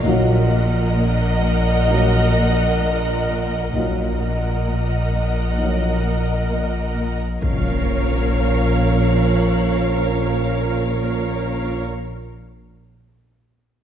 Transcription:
0.04 A#1 A#2 F#3 A#3 D#4 A#4 D#5 F#5
0.50 A#2
0.97 A#2
1.43 A#3
1.88 A#2 F#3 A#3 D#4
2.35 A#2
2.81 A#2
3.27 A#2
3.73 A#1 A#2 F#3 A#3 D#4 A#4 D#5 F#5
4.20 A#2
4.66 A#2
5.12 A#3
5.58 A#2 F#3 A#3 D#4
6.04 A#2
6.50 A#2
6.96 A#2
7.42 A#1 A#2 F3 A#3 C#4 A#4 C#5 F5 C#6 F6, impact
9.14 F#6

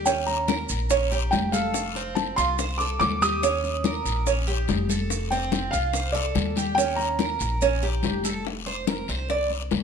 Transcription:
Already playing: D#2
0.06 C#4 G5, high bongo, high conga, long guiro, maracas
0.27 A#5, high bongo, high conga, maracas
0.48 A#4, high bongo, high conga, short guiro, maracas
0.69 A#1, short guiro, maracas
0.90 C#4, high bongo, high conga, long guiro, maracas
1.11 G4, high bongo, high conga, maracas
1.31 F1 G5, high bongo, low bongo, high conga, short guiro, maracas
1.52 A4 F5, high bongo, high conga, short guiro, maracas
1.74 high bongo, high conga, long guiro, maracas
1.95 C4, high bongo, high conga, maracas
2.15 A5, high bongo, high conga, short guiro, maracas
2.36 C2 F4 C6, short guiro, maracas
2.59 C5, high bongo, high conga, long guiro, maracas
2.78 A4 D6, high bongo, high conga, maracas
3.00 D#2 D6, high bongo, low bongo, high conga, short guiro, maracas
3.21 G4 D#6, high bongo, high conga, short guiro, maracas
3.43 C#4, high bongo, high conga, long guiro, maracas
3.64 high bongo, high conga, maracas
3.84 A#4, high bongo, high conga, short guiro, maracas
4.05 A#1, short guiro, maracas
4.27 C#4, high bongo, high conga, long guiro, maracas
4.47 G4, high bongo, high conga, maracas
4.68 F1, high bongo, low bongo, high conga, short guiro, maracas
4.89 A4, high bongo, high conga, short guiro, maracas
5.10 high bongo, high conga, long guiro, maracas
5.31 C4 G5, high bongo, high conga, maracas
5.52 high bongo, high conga, short guiro, maracas
5.71 C2 F4 F5, short guiro, maracas
5.93 C5, high bongo, high conga, long guiro, maracas
6.12 A4 D5, high bongo, high conga
6.16 maracas
6.35 D#2, high bongo, low bongo, high conga, short guiro, maracas
6.56 G4, high bongo, high conga, short guiro, maracas
6.75 C#4 G5, high bongo, high conga, long guiro
6.79 maracas
6.96 A#5, high bongo, high conga, maracas
7.19 A#4, high bongo, high conga, short guiro, maracas
7.39 A#1, short guiro, maracas
7.61 C#4, high bongo, high conga, long guiro, maracas
7.82 G4, high bongo, high conga, maracas
8.03 F1, high bongo, low bongo, high conga, short guiro, maracas
8.24 A4, high bongo, high conga, short guiro, maracas
8.45 high bongo, high conga, long guiro
8.66 C5, high bongo, high conga
8.87 A#4, high bongo, high conga, short guiro
9.08 C2 C5, short guiro
9.29 D5, high bongo, high conga, long guiro
9.50 high bongo, high conga
9.71 D#2, high bongo, low bongo, high conga, short guiro

